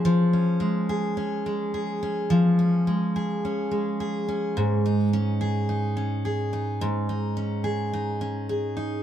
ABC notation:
X:1
M:4/4
L:1/8
Q:"Swing 16ths" 1/4=106
K:Db
V:1 name="Steel-string acoustic guitar"
F, D A, A D A, A D | F, D A, A D A, A D | A,, E D A E D A E | A,, E D A E D A E |]